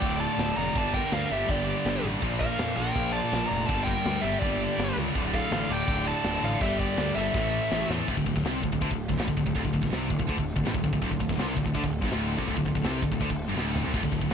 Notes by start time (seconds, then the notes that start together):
Already playing: D2 A2 D3 A3 F4 D5 G5
0.00 D1 D2 A2 D3, kick, crash
0.20 D5 A5, crash
0.38 D1, snare, crash
0.57 F1 D5 A#5, crash
0.75 G1 G2 D3 A#3 G4 D5 A5, kick, crash
0.79 G3
0.94 A#4 G5, kick, crash
1.12 D2 A#4 F5, snare, crash
1.30 G1 G2 D3 G3 G4 E5, crash
1.47 G1 G2 D3 G3 G4 D5, kick, crash
1.67 crash
1.85 G1, snare, crash
2.04 A1, crash
2.22 A#1 A#2 D3 F3 A#3 F4, kick, crash
2.40 A#4 F5, kick, crash
2.59 F2, snare, crash
2.76 A#1 F3 A#3 A#4 G5, crash
2.81 A#2
2.94 A#1 A#2 F3 A#3, kick, crash
3.12 D5 A5, crash
3.33 A#1, snare, crash
3.47 D5 A#5
3.51 F1, crash
3.66 G1 G2 G4 D5 A5, kick, crash
3.71 D3 G3
3.84 A#4 G5, kick, crash
4.05 D2, snare, crash
4.21 G1 D3 G3 G4 E5, crash
4.27 G2
4.39 G1 G2 D3 G4 D5, kick, crash
4.43 G3
4.61 crash
4.78 G1, snare, crash
4.97 C#2, crash
5.14 D1 D2 A2 A3 F4 D5, kick, crash
5.18 D3
5.34 A4 F5, kick, crash
5.51 A1 A4 F5, snare, crash
5.69 D1 D2 A2 D3 D5 G5, crash
5.87 D1 D2 A2 D3, kick, crash
6.06 D5 A5, crash
6.24 D1, snare, crash
6.42 A1 A4 F5, crash
6.60 G1 G2 D3 G3 A#3 G4 E5, kick, crash
6.79 G4 D5, kick, crash
6.97 D2, snare, crash
7.15 G1 G2 D3 G3 A4 E5, crash
7.33 A1 A2 C#3 E3 A3 E4 C#5, kick, snare
7.71 A1, snare
7.89 E2 A2 E3 A3, snare
8.08 D1 D2 D3 A3 F4 A4, kick, crash
8.17 D1 D2, kick
8.26 D1 D2, kick
8.36 D1 D2, kick, snare
8.45 C2 C3, snare, open hi-hat
8.63 D1 D2, kick
8.72 D1 D2, kick
8.81 D2 D3, kick, open hi-hat
8.90 D1 D2, kick
9.09 D1 D2, kick, snare
9.17 A1 A2, snare, open hi-hat
9.28 D1 D2, kick
9.37 D1 D2, kick
9.46 D1 D2, kick
9.55 D1 D2, kick, open hi-hat
9.64 D1 D2, kick
9.73 D1 D2, kick
9.81 D1 D2, kick, snare
9.91 C2 C3, snare, open hi-hat
10.10 D1 D2, kick
10.19 D1 D2, kick
10.27 D2 D3, kick, open hi-hat
10.37 D1 D2, kick
10.56 D1 D2, kick
10.65 A1 A2, snare, open hi-hat
10.74 D1 D2, kick
10.83 D1 D2, kick
10.93 D1 D2, kick
11.02 D1 D2, kick, open hi-hat
11.11 D1 D2, kick
11.20 D1 D2, kick
11.29 D1 D2, kick, snare
11.38 C2 C3, snare, open hi-hat
11.56 D1 D2, kick
11.65 D1 D2, kick
11.75 D2 D3, kick, open hi-hat
11.84 D1 D2, kick
12.02 G1 G2, kick, snare
12.11 D1 D2, snare, open hi-hat
12.38 C2 C3, kick
12.48 D1 D2, kick, open hi-hat
12.56 D1 D2, kick
12.66 D1 D2, kick
12.75 D1 D2, kick
12.84 C2 C3, snare, open hi-hat
13.02 D1 D2, kick
13.11 D1 D2, kick
13.20 D2 D3, kick, open hi-hat
13.30 D1 D2, kick
13.48 G1 G2
13.57 D1 D2, snare
13.76 floor tom
13.84 C2 C3
13.94 D1 D2, kick, open hi-hat, crash
14.03 D1 D2, kick
14.12 D1 D2, kick
14.22 D1 D2, kick
14.30 C3, open hi-hat